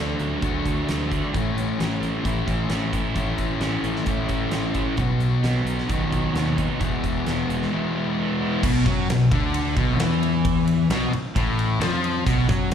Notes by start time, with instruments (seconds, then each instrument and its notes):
Already playing: fingered electric bass D2, overdriven electric guitar D3 A3 D4, distorted electric guitar D3 A3 D4 F#4
0.19 fingered electric bass D2, overdriven electric guitar F#3, closed hi-hat
0.42 fingered electric bass D2, overdriven electric guitar D3, distorted electric guitar D3 A3 D4 F#4, kick, closed hi-hat
0.66 fingered electric bass D2, overdriven electric guitar F#3, kick, closed hi-hat
0.87 fingered electric bass D2, overdriven electric guitar A3, snare, closed hi-hat
1.10 overdriven electric guitar D4, kick, closed hi-hat
1.33 fingered electric bass A1, overdriven electric guitar A2, distorted electric guitar A2 E3 A3 C#4 E4, kick, closed hi-hat
1.56 fingered electric bass A1, closed hi-hat
1.79 fingered electric bass A1, overdriven electric guitar C#4, snare, closed hi-hat
2.00 fingered electric bass A1, overdriven electric guitar A3, closed hi-hat
2.24 fingered electric bass A1, distorted electric guitar A2 E3 A3 C#4 E4, overdriven electric guitar E3, kick, closed hi-hat
2.47 fingered electric bass A1, overdriven electric guitar A3, kick, closed hi-hat
2.70 fingered electric bass A1, overdriven electric guitar C#4, snare, closed hi-hat
2.92 overdriven electric guitar E4, kick, closed hi-hat
3.15 fingered electric bass A1, distorted electric guitar A2 E3 A3 C#4 E4, overdriven electric guitar A2, kick, closed hi-hat
3.38 fingered electric bass A1, kick, closed hi-hat
3.60 fingered electric bass A1, overdriven electric guitar C#4, snare, closed hi-hat
3.83 fingered electric bass A1, overdriven electric guitar A3, closed hi-hat
3.96 snare
4.06 fingered electric bass A1, distorted electric guitar A2 E3 A3 C#4 E4, overdriven electric guitar E3, kick, closed hi-hat
4.29 fingered electric bass A1, overdriven electric guitar A3, kick, closed hi-hat
4.50 fingered electric bass A1, overdriven electric guitar C#4, snare, closed hi-hat
4.74 overdriven electric guitar E4, kick, closed hi-hat
4.97 fingered electric bass B1, distorted electric guitar B2 F#3 B3 D#4 F#4, overdriven electric guitar B2, kick, closed hi-hat
5.18 fingered electric bass B1, closed hi-hat
5.43 fingered electric bass B1, overdriven electric guitar B3, snare, closed hi-hat
5.64 fingered electric bass B1, overdriven electric guitar F#3, closed hi-hat
5.79 snare
5.87 fingered electric bass B1, distorted electric guitar B2 F#3 B3, overdriven electric guitar D#3, kick, closed hi-hat
5.92 distorted electric guitar D#4 F#4
6.11 fingered electric bass B1, overdriven electric guitar F#3, kick, closed hi-hat
6.33 fingered electric bass D#2, overdriven electric guitar B3, snare, closed hi-hat
6.57 overdriven electric guitar D#4, kick, closed hi-hat
6.80 fingered electric bass E1, distorted electric guitar E2 B2 E3 G#3 B3 E4, overdriven electric guitar E3, kick, closed hi-hat
7.03 fingered electric bass E1, kick, closed hi-hat
7.26 fingered electric bass E1, overdriven electric guitar B3, snare, closed hi-hat
7.49 fingered electric bass E1, overdriven electric guitar G#3, closed hi-hat
7.62 snare
7.72 distorted electric guitar E2 B2 E3 G#3 B3 E4, overdriven electric guitar E3
7.94 overdriven electric guitar G#3
8.19 overdriven electric guitar B3
8.41 overdriven electric guitar E4
8.63 fingered electric bass B1, distorted electric guitar B2, overdriven electric guitar B2, kick, crash
8.86 fingered electric bass F#2, overdriven electric guitar F#3, distorted electric guitar F#3, kick, ride
9.08 fingered electric bass B1, overdriven electric guitar B2, distorted electric guitar B2, snare, ride
9.31 fingered electric bass D2, distorted electric guitar D3, overdriven electric guitar D3, kick, ride
9.54 ride
9.76 fingered electric bass B1, distorted electric guitar B2, overdriven electric guitar B2, kick, ride
9.97 fingered electric bass E2, distorted electric guitar E3, overdriven electric guitar E3, snare, ride
10.23 ride
10.45 kick, ride
10.67 ride
10.90 fingered electric bass B1, distorted electric guitar B2, overdriven electric guitar B2, snare, ride
11.12 muted fingered electric bass stroke, muted overdriven electric guitar stroke, muted distorted electric guitar stroke, ride
11.35 fingered electric bass A1, overdriven electric guitar A2, distorted electric guitar A2, kick, ride
11.59 ride
11.80 fingered electric bass F2, distorted electric guitar F3, overdriven electric guitar F3, snare, ride
12.04 ride
12.26 fingered electric bass B1, distorted electric guitar B2, overdriven electric guitar B2, kick, ride, shaker
12.49 fingered electric bass F#2, overdriven electric guitar F#3, distorted electric guitar F#3, kick, ride, shaker
12.70 fingered electric bass B1